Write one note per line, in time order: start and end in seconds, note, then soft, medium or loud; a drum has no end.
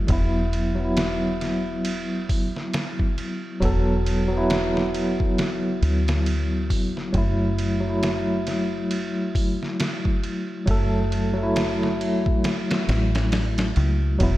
0.07 3.39 E1 medium
0.07 0.72 F#3 medium
0.07 0.73 B3 medium
0.07 kick loud
0.07 ride medium
0.12 0.75 E4 medium
0.53 ride medium
0.75 3.56 F#3 medium
0.80 3.58 B3 medium
0.84 3.60 E4 medium
0.97 snare loud
0.97 ride medium
1.41 snare soft
1.41 ride medium
1.85 ride medium
2.29 kick loud
2.29 open hi-hat medium
2.56 snare soft
2.74 snare loud
2.74 ride medium
2.99 kick medium
3.18 ride medium
3.60 5.79 E1 medium
3.60 4.25 F#3 medium
3.60 4.26 B3 medium
3.60 kick loud
3.60 ride medium
3.65 4.27 A4 medium
4.06 ride medium
4.28 7.09 F#3 medium
4.32 7.11 B3 medium
4.37 7.13 E4 loud
4.50 snare loud
4.50 ride medium
4.77 snare medium
4.95 ride medium
5.20 kick medium
5.38 snare loud
5.38 ride medium
5.82 6.70 D2 medium
5.82 ride medium
6.08 snare loud
6.08 ride medium
6.26 ride medium
6.70 7.10 E1 loud
6.70 kick medium
6.70 open hi-hat medium
6.97 snare soft
7.13 10.44 F#1 loud
7.13 7.78 F#3 medium
7.13 7.79 A3 medium
7.13 kick loud
7.13 ride medium
7.18 7.80 E4 medium
7.59 ride medium
7.80 10.61 F#3 medium
7.85 10.64 A3 medium
7.90 10.66 E4 medium
8.03 snare loud
8.03 ride medium
8.47 snare soft
8.47 ride medium
8.91 ride medium
9.35 kick loud
9.35 open hi-hat medium
9.63 snare soft
9.80 snare loud
9.80 ride medium
10.05 kick medium
10.23 ride medium
10.66 12.85 F#1 loud
10.66 11.31 F#3 medium
10.66 11.32 A3 medium
10.66 kick loud
10.66 ride medium
10.71 11.33 A4 loud
11.12 ride medium
11.34 14.14 F#3 medium
11.38 14.16 A3 medium
11.43 14.19 E4 loud
11.56 snare loud
11.56 ride medium
11.83 snare medium
12.01 ride medium
12.26 kick loud
12.44 snare loud
12.44 ride medium
12.71 snare loud
12.71 ride medium
12.89 13.73 A1 medium
12.89 snare loud
12.89 ride medium
13.15 snare loud
13.15 ride medium
13.32 snare loud
13.32 ride medium
13.58 snare loud
13.58 ride medium
13.76 14.17 C#2 medium
13.76 ride medium
14.19 14.37 E1 loud
14.19 14.37 F#3 medium
14.19 14.37 B3 medium
14.19 kick loud
14.19 ride medium
14.23 14.37 E4 medium